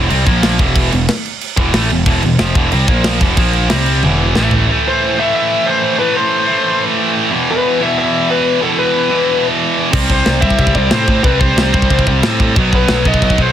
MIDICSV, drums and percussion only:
0, 0, Header, 1, 2, 480
1, 0, Start_track
1, 0, Key_signature, 1, "minor"
1, 0, Tempo, 328228
1, 1098, Time_signature, 4, 2, 24, 8
1, 19775, End_track
2, 0, Start_track
2, 0, Title_t, "Drums"
2, 150, Note_on_c, 9, 49, 91
2, 297, Note_off_c, 9, 49, 0
2, 389, Note_on_c, 9, 36, 98
2, 389, Note_on_c, 9, 49, 62
2, 535, Note_off_c, 9, 36, 0
2, 535, Note_off_c, 9, 49, 0
2, 629, Note_on_c, 9, 49, 90
2, 632, Note_on_c, 9, 38, 116
2, 775, Note_off_c, 9, 49, 0
2, 778, Note_off_c, 9, 38, 0
2, 867, Note_on_c, 9, 36, 94
2, 869, Note_on_c, 9, 49, 68
2, 1013, Note_off_c, 9, 36, 0
2, 1015, Note_off_c, 9, 49, 0
2, 1105, Note_on_c, 9, 36, 124
2, 1110, Note_on_c, 9, 49, 96
2, 1251, Note_off_c, 9, 36, 0
2, 1256, Note_off_c, 9, 49, 0
2, 1350, Note_on_c, 9, 49, 65
2, 1496, Note_off_c, 9, 49, 0
2, 1587, Note_on_c, 9, 49, 88
2, 1590, Note_on_c, 9, 38, 118
2, 1733, Note_off_c, 9, 49, 0
2, 1736, Note_off_c, 9, 38, 0
2, 1836, Note_on_c, 9, 49, 69
2, 1982, Note_off_c, 9, 49, 0
2, 2067, Note_on_c, 9, 49, 91
2, 2213, Note_off_c, 9, 49, 0
2, 2302, Note_on_c, 9, 36, 108
2, 2448, Note_off_c, 9, 36, 0
2, 2540, Note_on_c, 9, 49, 102
2, 2543, Note_on_c, 9, 38, 120
2, 2686, Note_off_c, 9, 49, 0
2, 2689, Note_off_c, 9, 38, 0
2, 2779, Note_on_c, 9, 49, 59
2, 2926, Note_off_c, 9, 49, 0
2, 3012, Note_on_c, 9, 49, 91
2, 3015, Note_on_c, 9, 36, 110
2, 3158, Note_off_c, 9, 49, 0
2, 3161, Note_off_c, 9, 36, 0
2, 3253, Note_on_c, 9, 49, 64
2, 3399, Note_off_c, 9, 49, 0
2, 3494, Note_on_c, 9, 49, 83
2, 3497, Note_on_c, 9, 38, 116
2, 3640, Note_off_c, 9, 49, 0
2, 3643, Note_off_c, 9, 38, 0
2, 3735, Note_on_c, 9, 36, 118
2, 3736, Note_on_c, 9, 49, 59
2, 3881, Note_off_c, 9, 36, 0
2, 3882, Note_off_c, 9, 49, 0
2, 3972, Note_on_c, 9, 49, 84
2, 4118, Note_off_c, 9, 49, 0
2, 4213, Note_on_c, 9, 36, 111
2, 4213, Note_on_c, 9, 49, 56
2, 4359, Note_off_c, 9, 36, 0
2, 4359, Note_off_c, 9, 49, 0
2, 4448, Note_on_c, 9, 49, 84
2, 4451, Note_on_c, 9, 38, 121
2, 4594, Note_off_c, 9, 49, 0
2, 4597, Note_off_c, 9, 38, 0
2, 4693, Note_on_c, 9, 36, 101
2, 4696, Note_on_c, 9, 49, 70
2, 4839, Note_off_c, 9, 36, 0
2, 4843, Note_off_c, 9, 49, 0
2, 4926, Note_on_c, 9, 49, 90
2, 4930, Note_on_c, 9, 36, 120
2, 5072, Note_off_c, 9, 49, 0
2, 5077, Note_off_c, 9, 36, 0
2, 5165, Note_on_c, 9, 49, 61
2, 5311, Note_off_c, 9, 49, 0
2, 5407, Note_on_c, 9, 49, 99
2, 5410, Note_on_c, 9, 38, 109
2, 5553, Note_off_c, 9, 49, 0
2, 5556, Note_off_c, 9, 38, 0
2, 5646, Note_on_c, 9, 49, 79
2, 5792, Note_off_c, 9, 49, 0
2, 5891, Note_on_c, 9, 48, 61
2, 6038, Note_off_c, 9, 48, 0
2, 6367, Note_on_c, 9, 38, 114
2, 6514, Note_off_c, 9, 38, 0
2, 6598, Note_on_c, 9, 43, 88
2, 6745, Note_off_c, 9, 43, 0
2, 14527, Note_on_c, 9, 36, 124
2, 14528, Note_on_c, 9, 49, 124
2, 14528, Note_on_c, 9, 52, 70
2, 14673, Note_off_c, 9, 36, 0
2, 14674, Note_off_c, 9, 49, 0
2, 14674, Note_off_c, 9, 52, 0
2, 14765, Note_on_c, 9, 36, 101
2, 14911, Note_off_c, 9, 36, 0
2, 15000, Note_on_c, 9, 52, 57
2, 15003, Note_on_c, 9, 38, 108
2, 15146, Note_off_c, 9, 52, 0
2, 15149, Note_off_c, 9, 38, 0
2, 15242, Note_on_c, 9, 36, 104
2, 15362, Note_off_c, 9, 36, 0
2, 15362, Note_on_c, 9, 36, 87
2, 15481, Note_off_c, 9, 36, 0
2, 15481, Note_on_c, 9, 36, 111
2, 15482, Note_on_c, 9, 52, 64
2, 15601, Note_off_c, 9, 36, 0
2, 15601, Note_on_c, 9, 36, 94
2, 15628, Note_off_c, 9, 52, 0
2, 15719, Note_off_c, 9, 36, 0
2, 15719, Note_on_c, 9, 36, 88
2, 15865, Note_off_c, 9, 36, 0
2, 15951, Note_on_c, 9, 52, 77
2, 15954, Note_on_c, 9, 38, 127
2, 16097, Note_off_c, 9, 52, 0
2, 16100, Note_off_c, 9, 38, 0
2, 16200, Note_on_c, 9, 36, 88
2, 16346, Note_off_c, 9, 36, 0
2, 16436, Note_on_c, 9, 52, 65
2, 16440, Note_on_c, 9, 36, 121
2, 16583, Note_off_c, 9, 52, 0
2, 16586, Note_off_c, 9, 36, 0
2, 16682, Note_on_c, 9, 36, 88
2, 16828, Note_off_c, 9, 36, 0
2, 16928, Note_on_c, 9, 52, 71
2, 16931, Note_on_c, 9, 38, 127
2, 17075, Note_off_c, 9, 52, 0
2, 17077, Note_off_c, 9, 38, 0
2, 17168, Note_on_c, 9, 36, 96
2, 17290, Note_off_c, 9, 36, 0
2, 17290, Note_on_c, 9, 36, 87
2, 17403, Note_on_c, 9, 52, 71
2, 17409, Note_off_c, 9, 36, 0
2, 17409, Note_on_c, 9, 36, 96
2, 17530, Note_off_c, 9, 36, 0
2, 17530, Note_on_c, 9, 36, 95
2, 17550, Note_off_c, 9, 52, 0
2, 17648, Note_off_c, 9, 36, 0
2, 17648, Note_on_c, 9, 36, 85
2, 17794, Note_off_c, 9, 36, 0
2, 17887, Note_on_c, 9, 52, 85
2, 17890, Note_on_c, 9, 38, 127
2, 18033, Note_off_c, 9, 52, 0
2, 18036, Note_off_c, 9, 38, 0
2, 18132, Note_on_c, 9, 36, 89
2, 18278, Note_off_c, 9, 36, 0
2, 18370, Note_on_c, 9, 52, 71
2, 18372, Note_on_c, 9, 36, 127
2, 18516, Note_off_c, 9, 52, 0
2, 18518, Note_off_c, 9, 36, 0
2, 18612, Note_on_c, 9, 36, 89
2, 18758, Note_off_c, 9, 36, 0
2, 18840, Note_on_c, 9, 52, 68
2, 18843, Note_on_c, 9, 38, 117
2, 18986, Note_off_c, 9, 52, 0
2, 18989, Note_off_c, 9, 38, 0
2, 19090, Note_on_c, 9, 36, 92
2, 19212, Note_off_c, 9, 36, 0
2, 19212, Note_on_c, 9, 36, 86
2, 19329, Note_on_c, 9, 52, 64
2, 19333, Note_off_c, 9, 36, 0
2, 19333, Note_on_c, 9, 36, 95
2, 19451, Note_off_c, 9, 36, 0
2, 19451, Note_on_c, 9, 36, 94
2, 19475, Note_off_c, 9, 52, 0
2, 19570, Note_off_c, 9, 36, 0
2, 19570, Note_on_c, 9, 36, 88
2, 19716, Note_off_c, 9, 36, 0
2, 19775, End_track
0, 0, End_of_file